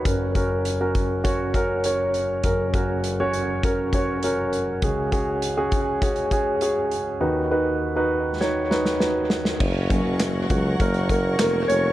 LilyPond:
<<
  \new Staff \with { instrumentName = "String section" } { \time 4/4 \key fis \major \tempo 4 = 100 r1 | r1 | r1 | r1 |
<ais' cis'' fis'' cis'''>1 | }
  \new Staff \with { instrumentName = "Grand piano" } { \time 4/4 \key fis \major <cis' fis' ais'>16 r16 <cis' fis' ais'>8 r16 <cis' fis' ais'>8 r16 <cis' fis' cis''>16 r16 <cis' fis' ais'>16 r16 <cis' fis' cis''>8. r16 | <cis' fis' ais'>16 r16 <cis' fis' ais'>8 r16 <cis' fis' cis''>8 r16 <cis' fis' ais'>16 r16 <cis' fis' cis''>16 r16 <cis' fis' ais'>8. r16 | <cis' fis' gis'>16 r16 <cis' fis' gis'>8 r16 <cis' fis' gis'>8 r16 <cis' fis' gis'>16 r16 <cis' fis' gis'>16 r16 <cis' fis' gis'>8. r16 | <dis' fis' b'>16 r16 <dis' fis' b'>8 r16 <dis' fis' b'>8 r16 <dis' fis' cis''>16 r16 <dis' fis' b'>16 r16 <dis' fis' b'>8. r16 |
r4. <fis fis'>8 <ais ais'>8 <ais ais'>8 <ais ais'>8 <cis' cis''>8 | }
  \new Staff \with { instrumentName = "Grand piano" } { \clef bass \time 4/4 \key fis \major <fis,, fis,>1 | <fis,, fis,>1 | <cis, cis>1 | <dis, dis>1 |
r8 <fis ais cis'>4. r2 | }
  \new Staff \with { instrumentName = "Tuba" } { \clef bass \time 4/4 \key fis \major r1 | r1 | r1 | r1 |
fis,,8. fis,,8. cis,8 fis,,4 eis,,8 eis,,8 | }
  \new DrumStaff \with { instrumentName = "Drums" } \drummode { \time 4/4 <hh bd>8 <hh bd>8 hh8 <hh bd>8 <hh bd>8 <hh bd>8 hh8 hh8 | <hh bd>8 <hh bd>8 hh8 hh8 <hh bd>8 <hh bd>8 hh8 hh8 | <hh bd>8 <hh bd>8 hh8 <hh bd>8 <hh bd>16 hh16 <hh bd>8 hh8 hh8 | r4 r4 sn8 sn16 sn16 sn8 sn16 sn16 |
<cymc bd>8 <hh bd>8 <hc hh sn>8 <hh bd>8 <hh bd>16 hh16 <hh bd>8 <hc hh sn>8 hh8 | }
>>